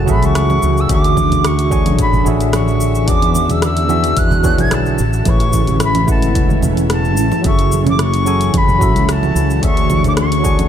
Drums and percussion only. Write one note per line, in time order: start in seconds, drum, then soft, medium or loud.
0.08 kick loud
0.08 cabasa medium
0.23 closed hi-hat soft
0.23 cabasa soft
0.35 cross-stick loud
0.35 closed hi-hat medium
0.35 cabasa soft
0.50 low conga medium
0.50 cabasa soft
0.62 cabasa medium
0.77 cabasa soft
0.89 kick loud
0.89 closed hi-hat medium
0.89 cabasa soft
1.04 closed hi-hat soft
1.04 cabasa soft
1.17 kick medium
1.17 high conga medium
1.17 low conga medium
1.17 cabasa medium
1.32 closed hi-hat soft
1.32 low conga medium
1.32 cabasa soft
1.45 cross-stick loud
1.45 closed hi-hat medium
1.45 cabasa soft
1.59 closed hi-hat soft
1.59 cabasa soft
1.71 kick loud
1.71 cabasa medium
1.86 closed hi-hat soft
1.86 low conga medium
1.86 cabasa soft
1.99 kick loud
1.99 closed hi-hat medium
1.99 cabasa soft
2.13 low conga medium
2.13 cabasa soft
2.26 cabasa medium
2.41 closed hi-hat soft
2.41 cabasa soft
2.53 cross-stick loud
2.53 closed hi-hat medium
2.53 low conga medium
2.53 cabasa soft
2.68 cabasa soft
2.80 cabasa medium
2.95 cabasa soft
3.08 kick loud
3.08 closed hi-hat medium
3.08 cabasa soft
3.22 closed hi-hat soft
3.22 low conga medium
3.22 cabasa soft
3.35 high conga medium
3.35 cabasa medium
3.49 closed hi-hat soft
3.49 low conga medium
3.49 cabasa soft
3.62 cross-stick loud
3.62 closed hi-hat medium
3.62 cabasa medium
3.77 closed hi-hat soft
3.77 cabasa soft
3.89 low conga medium
3.89 cabasa medium
4.04 closed hi-hat soft
4.04 cabasa soft
4.17 kick loud
4.17 closed hi-hat medium
4.17 cabasa soft
4.31 low conga medium
4.31 cabasa soft
4.44 kick loud
4.44 cabasa medium
4.58 closed hi-hat soft
4.58 low conga medium
4.58 cabasa soft
4.71 cross-stick loud
4.71 closed hi-hat medium
4.71 cabasa soft
4.86 cabasa soft
4.98 cabasa medium
5.13 cabasa soft
5.25 kick loud
5.25 closed hi-hat medium
5.25 low conga medium
5.25 cabasa soft
5.40 closed hi-hat soft
5.40 cabasa soft
5.53 kick medium
5.53 high conga medium
5.53 cabasa medium
5.67 closed hi-hat soft
5.67 low conga medium
5.67 cabasa soft
5.80 cross-stick loud
5.80 closed hi-hat medium
5.80 cabasa soft
5.95 closed hi-hat soft
5.95 low conga medium
5.95 cabasa soft
6.08 kick loud
6.08 cabasa medium
6.22 closed hi-hat soft
6.22 cabasa soft
6.35 kick loud
6.35 closed hi-hat medium
6.35 cabasa soft
6.49 high conga medium
6.49 low conga medium
6.49 cabasa soft
6.63 low conga medium
6.63 cabasa medium
6.77 closed hi-hat soft
6.77 cabasa soft
6.90 cross-stick loud
6.90 closed hi-hat medium
6.90 cabasa soft
7.05 cabasa soft
7.17 cabasa medium
7.32 low conga medium
7.32 cabasa soft
7.44 kick loud
7.44 closed hi-hat medium
7.44 cabasa soft
7.59 closed hi-hat soft
7.59 cabasa soft
7.72 high conga medium
7.72 cabasa medium
7.86 closed hi-hat soft
7.86 low conga medium
7.86 cabasa soft
7.99 cross-stick medium
7.99 closed hi-hat medium
7.99 cabasa soft
8.14 closed hi-hat soft
8.14 cabasa soft
8.27 cabasa medium
8.41 closed hi-hat soft
8.41 cabasa soft
8.54 kick loud
8.54 closed hi-hat medium
8.54 low conga medium
8.54 cabasa soft
8.68 low conga medium
8.68 cabasa soft
8.81 kick loud
8.81 cabasa medium
8.96 closed hi-hat soft
8.96 cabasa soft
9.09 cross-stick loud
9.09 closed hi-hat medium
9.09 cabasa soft
9.23 low conga medium
9.23 cabasa soft
9.36 cabasa medium
9.50 cabasa soft
9.63 kick loud
9.63 closed hi-hat medium
9.63 cabasa soft
9.77 closed hi-hat soft
9.77 cabasa soft
9.90 kick medium
9.90 high conga medium
9.90 low conga medium
9.90 cabasa medium
10.04 closed hi-hat soft
10.04 low conga medium
10.04 cabasa soft
10.17 cross-stick loud
10.17 closed hi-hat medium
10.17 cabasa soft
10.32 closed hi-hat soft
10.32 cabasa soft
10.45 kick loud
10.45 cabasa medium
10.59 closed hi-hat soft
10.59 low conga medium
10.59 cabasa soft